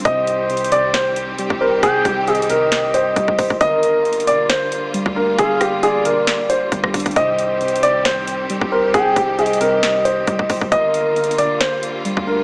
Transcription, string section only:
\new Staff \with { instrumentName = "String section" } { \time 4/4 \key c \minor \tempo 4 = 135 << { <ees c' g'>1~ | <ees c' g'>1 | <d bes f'>1~ | <d bes f'>1 |
<ees c' g'>1~ | <ees c' g'>1 | <d bes f'>1 | } \\ { g1~ | g1 | g1~ | g1~ |
g1~ | g1 | g1 | } >> }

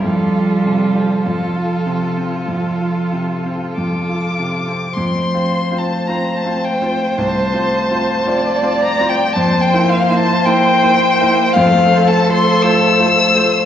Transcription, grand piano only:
\new Staff \with { instrumentName = "Grand piano" } { \time 4/4 \key f \major \tempo 4 = 54 f,16 f'16 c16 c'16 f,16 f'16 c16 c'16 f,16 f'16 c16 c'16 f,16 f'16 c16 c'16 | \tuplet 3/2 { f,8 <c' f' c''>8 <c' f' c''>8 <c' f' c''>8 <c' f' c''>8 <c' f' c''>8 c,8 <c' f' c''>8 <c' f' c''>8 <c' f' c''>8 <c' f' c''>8 <c' f' c''>8 } | \tuplet 3/2 { f,8 <bes e' c''>8 <bes e' c''>8 <bes e' c''>8 <bes e' c''>8 <bes e' c''>8 f,8 <a f' c''>8 <a f' c''>8 <a f' c''>8 <a f' c''>8 <a f' c''>8 } | }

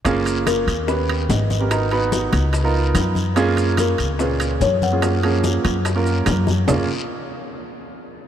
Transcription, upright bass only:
\new Staff \with { instrumentName = "Upright bass" } { \clef bass \time 4/4 \key fis \major \tempo 4 = 145 fis,,4. dis,4. gis,,4~ | gis,,4. cis,4. fis,4~ | fis,4. cis,4. fis,4~ | fis,4. fis,4. fis,4 |
fis,,8 r2. r8 | }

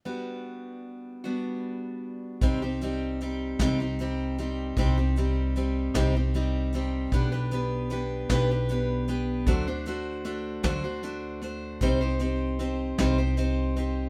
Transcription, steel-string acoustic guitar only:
\new Staff \with { instrumentName = "Steel-string acoustic guitar" } { \time 6/8 \key g \major \tempo 4. = 51 <g b d' fis'>4. <g b d' fis'>4. | <c g c' ees' g'>16 <c' ees' g'>16 <g c' ees' g'>8 <g c' ees' g'>8 <c g c' ees' g'>16 <c' ees' g'>16 <g c' ees' g'>8 <g c' ees' g'>8 | <c g c' ees' g'>16 <c' ees' g'>16 <g c' ees' g'>8 <g c' ees' g'>8 <c g c' ees' g'>16 <c' ees' g'>16 <g c' ees' g'>8 <g c' ees' g'>8 | <b d' g' b'>16 <d' g' b'>16 <b d' g' b'>8 <b d' g' b'>8 <b d' g' b'>16 <d' g' b'>16 <b d' g' b'>8 <b d' g' b'>8 |
<d fis a d' fis' c''>16 <a d' fis' c''>16 <a d' fis' c''>8 <a d' fis' c''>8 <d fis a d' fis' c''>16 <a d' fis' c''>16 <a d' fis' c''>8 <a d' fis' c''>8 | <c g c' ees' g' c''>16 <c' ees' g' c''>16 <c' ees' g' c''>8 <c' ees' g' c''>8 <c g c' ees' g' c''>16 <c' ees' g' c''>16 <c' ees' g' c''>8 <c' ees' g' c''>8 | }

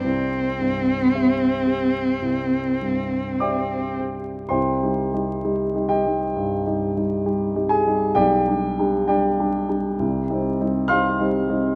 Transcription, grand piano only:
\new Staff \with { instrumentName = "Grand piano" } { \time 4/4 \key c \major \tempo 4 = 65 << { r2. <d'' g'' d'''>4 | \key c \minor <c'' g'' c'''>4. <g' ees'' g''>2 <aes' aes''>8 | <g' d'' g''>4 <g' d'' g''>4. r8 <f'' c''' f'''>4 | } \\ { c,8 g,8 <g' c'' e''>8 g'8 c,8 g,8 <g' c'' e''>8 g'8 | \tuplet 3/2 { c,8 <g ees' g'>8 <g ees' g'>8 <g ees' g'>8 <g ees' g'>8 <g ees' g'>8 g,8 <g ees' g'>8 <g ees' g'>8 <g ees' g'>8 <g ees' g'>8 <g ees' g'>8 } | \tuplet 3/2 { b,,8 <g d' g'>8 <g d' g'>8 <g d'>8 <g d' g'>8 <g d' g'>8 c,8 <g c' ees'>8 <g c' ees'>8 <g c' ees'>8 <g c' ees'>8 <g c' ees'>8 } | } >> }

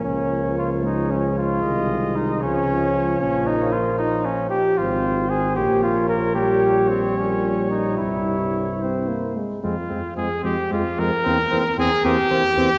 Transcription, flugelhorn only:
\new Staff \with { instrumentName = "Flugelhorn" } { \time 6/8 \key des \major \tempo 4. = 76 des'4 f'8 ees'8 des'8 f'8~ | f'4 ees'8 des'4. | \key f \minor des'8 ees'8 f'8 ees'8 des'8 g'8 | f'4 aes'8 g'8 f'8 bes'8 |
g'4 c'8 des'4 ees'8 | e'2~ e'8 r8 | c'8 c'8 c'8 c'8 c'8 c'8 | c'8 c'8 c'8 c'8 c'8 c'8 | }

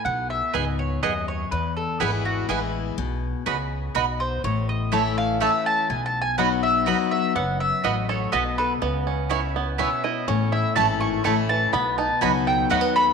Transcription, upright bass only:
\new Staff \with { instrumentName = "Upright bass" } { \clef bass \time 3/4 \key b \mixolydian \tempo 4 = 123 b,,4 cis,4 dis,4 | e,4 gis,,4 a,,4 | b,,4 cis,4 b,,4 | a,,2. |
b,,2. | fis,,4 a,,4 b,,4 | cis,2. | a,,4 gis,,4 a,,4 |
b,,4 cis,4 dis,4 | }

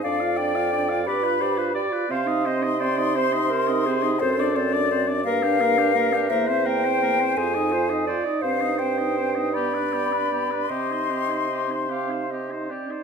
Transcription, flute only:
\new Staff \with { instrumentName = "Flute" } { \time 6/8 \key c \minor \tempo 4. = 57 f''8 g''4 b''4 r8 | c'''2. | c''8 d''4 f''4. | e''8 g''4 aes''4 r8 |
f''8 g''4 b''4. | c'''2~ c'''8 r8 | }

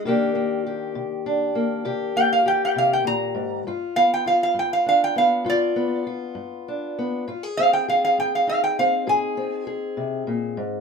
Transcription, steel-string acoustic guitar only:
\new Staff \with { instrumentName = "Steel-string acoustic guitar" } { \time 12/8 \key c \minor \tempo 4. = 67 << { <ees bes d' g'>8 bes8 g'4 d'8 bes8 g'8 bes8 g'2 | f'8 b8 f'4 d'8 b8 f'8 b8 f'4 d'8 b8 | f'16 aes'16 c'8 aes'4 ees'8 c'8 aes'8 c'8 aes'2 | } \\ { c4 r8 c4 r8 c4 r8 c8 bes,8 aes,8 | g,4 r8 g,4 r8 g,4 r8 g,4 r8 | aes,4 r8 aes,4 r8 aes,4 r8 c8 bes,8 aes,8 | } >> }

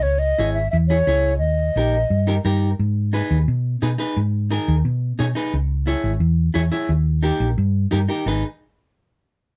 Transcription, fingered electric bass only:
\new Staff \with { instrumentName = "Fingered electric bass" } { \clef bass \time 4/4 \key gis \minor \tempo 4 = 175 cis,4 gis,,4 e,4 cis,4 | dis,4 ais,,4 g,4 g,4 | gis,4. dis,8 b,4 b,8 r8 | gis,4. dis,8 b,4 b,8 r8 |
cis,4. gis,,8 e,4 e,8 r8 | dis,4. ais,,8 g,4 g,8 r8 | gis,,8 r2. r8 | }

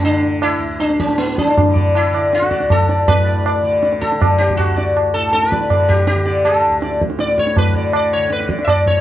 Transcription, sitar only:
\new Staff \with { instrumentName = "Sitar" } { \time 4/4 \tempo 4 = 160 << { r1 | r8 d''8 r8 d''8 r8 d''8 r8 d''8 | r8 d''8 d''8 d''8 d''8 r8 d''8 r8 | r8 d''8 r4. d''8 d''8 r8 |
r8 d''8 r4 d''8 r4. | r8 d''8 r4. d''8 r4 | } \\ { d'4 e'4 d'8 cis'8 b8 d'8~ | d'8 r8 e'4 fis'4 a'4 | b'4. r4 a'4 g'8 | fis'4. a'8 b'4. g'8 |
g'4 a'4. r8 d''8 cis''8 | b'8 r8 d''8 cis''8 b'8 r16. e''32 d''8 cis''8 | } >> }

